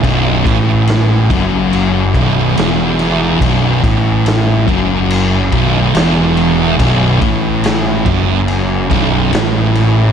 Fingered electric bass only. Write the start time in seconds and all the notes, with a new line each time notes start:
0.03 B0
0.46 A1
1.30 F#1
2.15 B0
2.58 E1
3.41 B0
3.83 A1
4.68 F#1
5.52 B0
5.94 E1
6.80 B0
7.22 A1
8.06 F#1
8.91 B0
9.33 A1